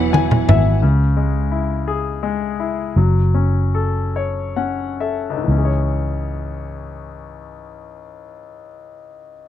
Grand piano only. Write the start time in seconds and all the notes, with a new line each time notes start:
Already playing: E3
0.13 E3 G#5
0.48 E3 E5
0.82 C#3
1.17 G#3
1.52 E4
1.88 G#4
2.23 G#3
2.60 E4
2.97 F#3
3.34 C#4
3.75 A4
4.16 C#5
4.56 C#4 F#5
5.00 A4 E5
5.30 C#2
5.37 G#2
5.44 E3
5.51 C#4
5.58 G#4
5.65 C#5